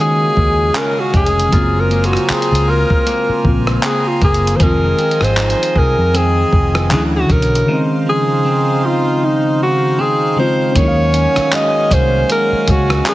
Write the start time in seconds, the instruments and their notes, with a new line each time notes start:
Already playing: fm electric piano C#3 G#3 A#3 F4 F#4, fingered electric bass D#3, clean electric guitar D#3 C#4 F#4, harmonium C#4 G#4 F5 G#5
0.00 clean electric guitar G#3, alto saxophone G#4
0.37 fingered electric bass D#2, kick
0.75 clean electric guitar C#4, alto saxophone A#4, clap, closed hi-hat
1.00 alto saxophone F#4
1.14 fingered electric bass F1, clean electric guitar G#3, alto saxophone G#4, kick, closed hi-hat
1.26 closed hi-hat
1.40 closed hi-hat
1.48 fm electric piano C#3 G#3, harmonium F4, kick
1.52 fingered electric bass F#1, clean electric guitar F#3 F4, fm electric piano A#3 C4, harmonium C5 A#5, closed hi-hat
1.58 fm electric piano F4
1.80 alto saxophone A#4
1.91 clean electric guitar A#3, closed hi-hat
2.04 alto saxophone F#4, closed hi-hat
2.13 cross-stick, closed hi-hat
2.29 clean electric guitar C4, alto saxophone G#4, muted fingered electric bass stroke, clap, closed hi-hat
2.42 closed hi-hat
2.52 fingered electric bass C#2, closed hi-hat
2.68 clean electric guitar F4, alto saxophone A#4
2.90 kick
3.06 clean electric guitar A#3, closed hi-hat
3.29 muted fingered electric bass stroke
3.43 fingered electric bass A#1, fm electric piano C#3 G#3 A#3 C4, kick
3.48 fm electric piano F4
3.67 cross-stick
3.83 clean electric guitar C4, alto saxophone G#4, clap, closed hi-hat
4.08 alto saxophone F4
4.22 fingered electric bass F#1, clean electric guitar A#3, alto saxophone G#4, kick, closed hi-hat
4.34 closed hi-hat
4.47 closed hi-hat
4.56 fingered electric bass F1, fm electric piano D#3 F3, clean electric guitar F3, harmonium F4, alto saxophone C5, kick, closed hi-hat
4.60 fm electric piano G#3 C4, clean electric guitar G#4, alto saxophone A#4, harmonium D#5
4.66 fm electric piano F4
4.99 clean electric guitar C4, closed hi-hat
5.11 closed hi-hat
5.21 fingered electric bass G#1, alto saxophone C5, cross-stick, closed hi-hat
5.37 clean electric guitar D#4, clap, closed hi-hat
5.50 closed hi-hat
5.63 closed hi-hat
5.76 fingered electric bass C2, clean electric guitar G#4, alto saxophone A#4, kick
5.98 fingered electric bass F2
6.14 clean electric guitar C4, alto saxophone G#4, closed hi-hat
6.53 fingered electric bass F1, kick
6.75 cross-stick
6.90 fingered electric bass D2, fm electric piano D3 E3 F#3 C#4, clean electric guitar D3, harmonium E4 C#5, clap, closed hi-hat
6.94 fm electric piano E4, alto saxophone G#4
7.16 alto saxophone F#4
7.29 fingered electric bass B1, clean electric guitar F#3, alto saxophone A#4, kick, closed hi-hat
7.42 closed hi-hat
7.55 closed hi-hat
7.64 fm electric piano C#3 D#3, harmonium D#4 C5 F5
7.68 clean electric guitar C#3 D#4, fm electric piano G#3 C4
7.74 fm electric piano D#4
8.06 clean electric guitar F3, alto saxophone G#4
8.45 clean electric guitar C4
8.83 clean electric guitar D#4, alto saxophone F4
9.24 alto saxophone D#4
9.63 alto saxophone F#4
9.99 clean electric guitar C4, alto saxophone G#4
10.36 fm electric piano C#3 F3 G#3 C4, clean electric guitar F3, alto saxophone C5
10.41 fm electric piano F4
10.72 fingered electric bass D#2, clean electric guitar D#3, fm electric piano F#3 C#4, harmonium G#5, kick, closed hi-hat
10.77 fm electric piano G#3 A#3, alto saxophone C#5
10.81 fm electric piano E4
10.88 fm electric piano F5
11.14 clean electric guitar C#4, closed hi-hat
11.36 muted fingered electric bass stroke, cross-stick, closed hi-hat
11.52 clean electric guitar G#3, alto saxophone D#5, clap, closed hi-hat
11.91 fingered electric bass C2, clean electric guitar C#4, alto saxophone C5, kick, closed hi-hat
12.29 clean electric guitar G#3, alto saxophone A#4, closed hi-hat
12.52 muted fingered electric bass stroke
12.68 fingered electric bass C#2, clean electric guitar C#4, alto saxophone F#4, kick, closed hi-hat
12.90 cross-stick
13.06 alto saxophone G#4, clap, closed hi-hat